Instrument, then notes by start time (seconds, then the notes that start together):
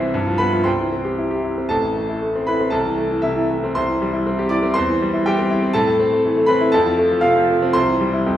grand piano
Already playing: C2 C4 E4 C5 E5
0.00 E3
0.14 G2
0.26 F3
0.38 B3 B4 B5
0.52 F3
0.64 C2 C5 G5 C6
0.80 E3
0.92 C4
1.05 G4
1.18 E4
1.31 G4
1.44 E4
1.58 C4
1.69 A1 A4 A5
1.84 E3
1.97 A3
2.09 E4
2.22 A3
2.36 C4
2.47 E4 B4 B5
2.60 C4
2.70 C2 A4 A5
2.85 E3
2.98 A3
3.11 E3
3.22 C3 E4 E5
3.36 E3
3.50 A3
3.64 C4
3.75 C2 C5 C6
3.89 E3
4.02 G3
4.13 E4
4.26 C4
4.39 G4
4.49 E4 D5 D6
4.63 C4
4.74 E2 C5 C6
4.89 E3
5.02 G3
5.14 E4
5.26 G3 G4 G5
5.39 C4
5.50 E4
5.62 C4
5.73 A2 A4 A5
5.87 A3
6.00 C4
6.12 A3
6.25 E3
6.37 A3
6.46 C4 B4 B5
6.61 E4
6.72 F2 A4 A5
6.86 F3
6.98 A3
7.11 F3
7.21 C3 F4 F5
7.36 F3
7.49 A3
7.62 C4
7.73 C2 C5 C6
7.88 E3
8.01 G3
8.14 E4
8.26 F2